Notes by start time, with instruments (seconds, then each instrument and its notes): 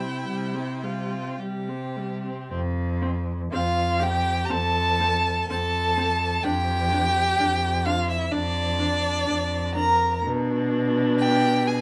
Already playing: cello C3, viola C4, violin E4 G5
0.26 cello C3, viola G3
0.54 viola C4
0.83 viola G3, violin F4
1.11 viola C4
1.39 cello C3, viola G3, violin G4
1.68 viola C4
1.96 viola G3
2.24 viola C4
2.51 cello F2, viola C4
3.01 viola C4
3.52 cello F2, viola C4, violin F4 F5
4.00 viola C4, violin G4 G5
4.45 violin A#5
4.49 cello F2, viola C4, violin A4 A5
5.00 viola C4
5.49 cello F2, viola C4, violin A4 A5
5.97 viola C4
6.43 cello F2, viola D4, violin G4 G5
6.92 viola D4
7.39 cello F2, viola D4
7.85 viola D4, violin F4 F5
8.09 violin E4 E5
8.31 cello F2, viola D4, violin D4 D5
8.79 viola D4
9.26 cello F2, viola D4
9.74 viola D4, violin A#4 A#5
10.21 cello B2, viola D4
11.18 violin G4 G5
11.67 violin G#4 G#5